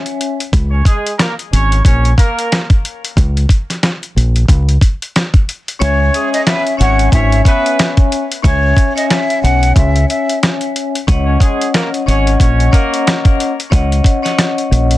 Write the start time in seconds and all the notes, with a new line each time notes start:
Already playing: C#4 C#5 E5 G#5
0.06 closed hi-hat
0.21 closed hi-hat
0.40 closed hi-hat
0.53 C#2, kick, closed hi-hat
0.70 C#4 C#5
0.85 G#3 G#4, kick, closed hi-hat
1.07 closed hi-hat
1.18 A#3 A#4, cross-stick, snare, closed hi-hat
1.39 closed hi-hat
1.53 G#1 C#4 C#5, closed hi-hat
1.72 closed hi-hat
1.84 A#1 C#4 C#5, kick, closed hi-hat
2.05 closed hi-hat
2.17 A#3 A#4, kick, closed hi-hat
2.39 closed hi-hat
2.52 cross-stick, snare, closed hi-hat
2.70 kick, closed hi-hat
2.85 closed hi-hat
3.05 closed hi-hat
3.17 C#2, kick, closed hi-hat
3.37 closed hi-hat
3.49 kick, closed hi-hat
3.70 snare, closed hi-hat
3.83 cross-stick, snare, closed hi-hat
4.03 closed hi-hat
4.16 A#1, closed hi-hat
4.36 closed hi-hat
4.49 C#2, kick, closed hi-hat
4.69 closed hi-hat
4.81 kick, closed hi-hat
5.02 closed hi-hat
5.16 cross-stick, snare, closed hi-hat
5.34 kick, closed hi-hat
5.49 closed hi-hat
5.68 closed hi-hat
5.79 C#2 C#4 C#5 E5 G#5, closed hi-hat
5.98 C#4 C#5
6.14 G#3 G#4, closed hi-hat
6.33 D#5, closed hi-hat
6.46 B3 B4 E5, cross-stick, snare, closed hi-hat
6.67 closed hi-hat
6.77 G#1 C#4 C#5 E5 F#5 G#5, closed hi-hat
6.99 closed hi-hat
7.12 G#1 C#4 C#5 E5, kick, closed hi-hat
7.32 closed hi-hat
7.44 B3 C#4 B4 C#5 E5 G#5, kick, closed hi-hat
7.66 closed hi-hat
7.79 cross-stick, snare, closed hi-hat
7.97 kick, closed hi-hat
8.12 closed hi-hat
8.32 closed hi-hat
8.42 C#2 C#4 C#5 E5 G#5, kick, closed hi-hat
8.77 kick, closed hi-hat
8.95 C#4 C#5 D#5 E5 G#5, closed hi-hat
9.10 E5, cross-stick, snare, closed hi-hat
9.30 closed hi-hat
9.43 B1 F#5, closed hi-hat
9.63 closed hi-hat
9.76 C#2 E5, kick, closed hi-hat
9.96 closed hi-hat
10.09 E5, closed hi-hat
10.29 closed hi-hat
10.43 cross-stick, snare, closed hi-hat
10.61 closed hi-hat
10.76 closed hi-hat
10.95 closed hi-hat
11.07 C#2 C#4 C#5 D#5 F#5, kick, closed hi-hat
11.25 C#4 C#5
11.40 G#3 G#4, kick, closed hi-hat
11.61 closed hi-hat
11.74 A#3 A#4, cross-stick, snare, closed hi-hat
11.94 closed hi-hat
12.06 G#1 C#4 C#5 D#5 F#5, closed hi-hat
12.27 closed hi-hat
12.39 A#1 C#4 C#5, kick, closed hi-hat
12.60 closed hi-hat
12.71 A#3 C#4 A#4 C#5 D#5 F#5, kick, closed hi-hat
12.94 closed hi-hat
13.07 cross-stick, snare, closed hi-hat
13.25 kick, closed hi-hat
13.40 closed hi-hat
13.60 closed hi-hat
13.70 C#2 C#4 C#5 D#5 F#5, kick, closed hi-hat
13.92 closed hi-hat
14.04 kick, closed hi-hat
14.22 C#4 C#5 D#5 F#5, snare, closed hi-hat
14.38 cross-stick, snare, closed hi-hat
14.58 closed hi-hat
14.71 A#1, closed hi-hat
14.91 closed hi-hat